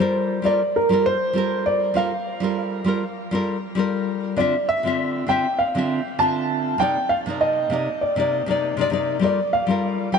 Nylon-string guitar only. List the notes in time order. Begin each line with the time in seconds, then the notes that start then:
Already playing: G3
0.00 F4 A4 A#4
0.42 G3 F4 A4
0.46 A#4
0.89 G3 F4 A4 A#4
1.33 G3 F4 A4
1.37 A#4
1.94 G3 F4 A4 A#4
2.40 G3 F4 A4 A#4
2.84 G3 F4 A4 A#4
3.31 G3 F4 A4 A#4
3.75 G3 F4 A4 A#4
4.36 D3 C4 F4 E5
4.83 D3 C4 F4
4.87 E5
5.27 D3 C4 F4
5.31 E5
5.75 D3 C4 F4 E5
6.19 D3 C4 F4 E5
6.78 C3 A#3 D#4 D5
7.26 C3 A#3 D#4
7.30 D5
7.70 C3 A#3 D#4 D5
8.16 C3 A#3 D#4 D5
8.46 C3 A#3 D#4
8.51 D5
8.77 C3 A#3 D#4
8.81 D5
8.90 C3 A#3 D#4 D5
9.19 G3 F4 A4 A#4
9.67 G3 F4 A4 A#4
10.12 G3 F4 A4 A#4